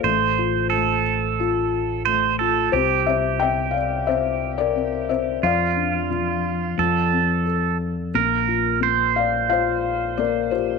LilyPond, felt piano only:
\new Staff \with { instrumentName = "Felt piano" } { \time 4/4 \key bes \major \tempo 4 = 89 << { <a' c''>4. r2 r8 | <g' c''>8 <c'' e''>8 <e'' g''>8 <d'' f''>8 <c'' e''>8. <bes' d''>8. <c'' e''>8 | <d'' f''>2. r4 | r4. <d'' f''>8 <c'' f''>4 <bes' d''>8 <g' c''>8 | } \\ { a8 f'8 a4 f'4 a8 f'8 | c'8 c'8 c'4 c'4 c'8 c'8 | f8 d'8 f4 f8 c'8 a'4 | bes8 f'8 bes4 f'4 bes8 f'8 | } >> }